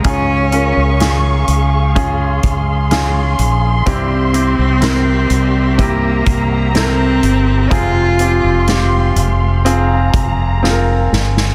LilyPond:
<<
  \new Staff \with { instrumentName = "String section" } { \time 4/4 \key f \minor \tempo 4 = 62 << { des'''2 c'''2~ | c'''2 bes''2 | c'''2 bes''2 | } \\ { <aes' f''>1 | <g' e''>1 | <aes f''>1 | } >> }
  \new Staff \with { instrumentName = "Grand piano" } { \time 4/4 \key f \minor <des' f' aes'>8 <des' f' bes'>8 <des' f' aes'>4 <des' f' aes'>4 <des' f' aes'>4 | <c' e' g'>8 <c' e' g'>8 <c' e' bes'>4 <c' e' g'>4 <c' e' a' bes'>4 | <c' f' aes'>8 <c' f' g'>8 <c' f' g'>4 <c' f' aes'>4 <c' f' aes' bes'>4 | }
  \new Staff \with { instrumentName = "Grand piano" } { \clef bass \time 4/4 \key f \minor aes,4. r2 r8 | g,4. r2 r8 | c4. r2 r8 | }
  \new Staff \with { instrumentName = "Cello" } { \time 4/4 \key f \minor des'4. r2 r8 | c'2 bes4 c'4 | f'4. r2 r8 | }
  \new Staff \with { instrumentName = "Fretless electric bass" } { \clef bass \time 4/4 \key f \minor des,8. des,8. des,4 des,4 bes,,8 | c,8. c,8. c,4 c,4 g,,8 | f,,8. f,,8. f,,4 f,,4 g,,8 | }
  \new DrumStaff \with { instrumentName = "Drums" } \drummode { \time 4/4 <hh bd>8 hh8 <hh sn>8 hh8 <hh bd>8 <hh bd>8 <hh sn>8 hh8 | <hh bd>8 hh8 <hh sn>8 hh8 <hh bd>8 <hh bd>8 <hh sn>8 hh8 | <hh bd>8 hh8 <hh sn>8 hh8 hh8 <hh bd>8 sn8 sn16 sn16 | }
>>